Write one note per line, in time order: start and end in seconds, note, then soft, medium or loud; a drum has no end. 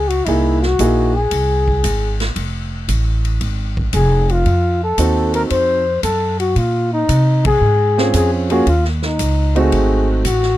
0.00 0.25 C#2 medium
0.08 0.26 F#4 medium
0.08 ride soft
0.25 0.77 C2 medium
0.25 0.60 A#3 soft
0.25 0.60 D#4 soft
0.25 0.60 E4 medium
0.25 0.60 E4 soft
0.25 0.60 G#4 medium
0.25 kick soft
0.25 ride soft
0.61 1.16 F#4 medium
0.61 snare soft
0.79 1.30 A#1 medium
0.79 1.12 A#3 medium
0.79 1.12 D#4 soft
0.79 1.12 E4 soft
0.79 1.12 G#4 medium
0.79 kick soft
0.79 hi-hat pedal soft
0.79 ride medium
1.14 2.20 G#4 medium
1.31 1.82 C2 medium
1.31 kick soft
1.31 ride medium
1.68 kick soft
1.84 2.35 G#1 medium
1.84 kick soft
1.84 hi-hat pedal soft
1.84 ride medium
2.20 snare soft
2.20 ride soft
2.36 2.87 F1 medium
2.36 kick soft
2.36 ride soft
2.88 3.39 A1 medium
2.88 kick soft
2.88 hi-hat pedal soft
2.88 ride medium
3.25 ride soft
3.41 3.92 G#1 medium
3.41 kick soft
3.41 ride soft
3.77 kick medium
3.93 4.44 F1 medium
3.93 4.32 G#4 medium
3.93 kick soft
3.93 hi-hat pedal medium
3.93 ride medium
4.29 4.83 F4 medium
4.29 ride soft
4.46 4.97 F2 medium
4.46 kick soft
4.46 ride soft
4.84 5.32 A4 medium
4.98 5.49 D#2 medium
4.98 5.80 C4 soft
4.98 5.80 D#4 soft
4.98 5.80 F#4 soft
4.98 5.80 A4 medium
4.98 kick soft
4.98 hi-hat pedal soft
4.98 ride medium
5.34 5.42 A#4 medium
5.34 ride soft
5.50 6.02 F2 medium
5.50 5.99 C5 medium
5.50 kick soft
5.50 ride medium
6.03 6.54 F#2 medium
6.03 6.37 A4 medium
6.03 kick soft
6.03 hi-hat pedal medium
6.03 ride medium
6.40 6.59 F#4 medium
6.40 ride soft
6.56 7.07 A#2 medium
6.56 6.93 F4 medium
6.56 kick soft
6.56 ride soft
6.93 7.42 D#4 medium
7.09 7.60 C3 medium
7.09 kick soft
7.09 hi-hat pedal soft
7.09 ride medium
7.45 8.10 G#4 medium
7.45 kick medium
7.45 ride medium
7.61 8.12 G#2 medium
7.98 8.46 C4 medium
7.98 8.47 C#4 soft
7.98 8.47 F4 medium
7.98 8.47 G#4 medium
7.98 snare soft
8.14 8.65 F2 medium
8.14 8.31 G#4 medium
8.14 kick soft
8.14 hi-hat pedal soft
8.14 ride medium
8.50 8.65 A#3 medium
8.50 8.65 C#4 medium
8.50 8.65 F4 medium
8.50 8.66 F#4 medium
8.50 8.65 G#4 medium
8.50 ride soft
8.67 9.17 D#2 medium
8.67 8.84 F4 medium
8.67 kick soft
8.67 ride soft
8.85 snare soft
9.02 9.60 D#4 medium
9.02 snare soft
9.19 9.70 C#2 medium
9.19 kick soft
9.19 hi-hat pedal soft
9.19 ride soft
9.55 10.21 A3 medium
9.55 10.21 C4 medium
9.55 10.21 D#4 medium
9.55 10.21 F#4 medium
9.55 10.08 G#4 medium
9.55 ride soft
9.72 10.23 G#1 medium
9.72 kick soft
9.72 ride soft
10.25 10.57 A1 medium
10.25 10.57 F#4 medium
10.25 kick soft
10.25 hi-hat pedal soft
10.25 ride medium
10.42 snare soft